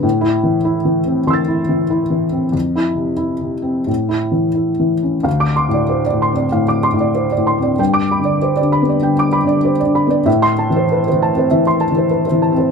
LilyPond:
<<
  \new Staff \with { instrumentName = "Felt piano" } { \time 4/4 \key d \dorian \tempo 4 = 95 << { \tuplet 3/2 { r8 e'4 } r4 <c''' e''' a'''>2 | \tuplet 3/2 { r8 e'4 } r4 \tuplet 3/2 { r8 e'4 } r4 | r16 d'''8 r2. r16 | r16 d'''8 r2. r16 |
r16 c'''8 r2. r16 | } \\ { r1 | r1 | f''8 c'''16 d''16 c''16 d''16 c'''16 d''16 f''16 d'''16 c'''16 d''16 c''16 d''16 c'''16 d''16 | g''8 b''16 d''16 c''16 d''16 b''16 d''16 g''16 d'''16 b''16 d''16 c''16 d''16 b''16 d''16 |
e''8 a''16 c''16 b'16 c''16 a''16 c''16 e''16 c'''16 a''16 c''16 b'16 c''16 a''16 c''16 | } >> }
  \new Staff \with { instrumentName = "Felt piano" } { \clef bass \time 4/4 \key d \dorian \tuplet 3/2 { a,4 e8 e'8 e8 c'8 e8 e'8 e8 e'8 e8 c'8 } | \tuplet 3/2 { f,4 c8 e'8 c8 c'8 a,4 e8 e'8 e8 cis'8 } | \tuplet 3/2 { d,4 a,8~ a,8 a,8 c'8 a,4 a,8~ a,8 a,8 c'8 } | \tuplet 3/2 { g,4 d8~ d8 d8 b8 d4 d8~ d8 d8 b8 } |
\tuplet 3/2 { a,4 e8~ e8 e8 c'8 e4 e8~ e8 e8 c'8 } | }
>>